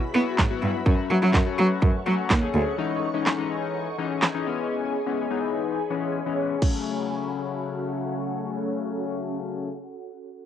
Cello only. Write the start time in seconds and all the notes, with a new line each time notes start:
0.14 B3
0.39 G#2
0.62 G2
0.86 F#2
1.10 F#3
1.22 F#3
1.34 F#2
1.58 F#3
1.82 F#2
2.06 F#3
2.30 D#2
2.54 D2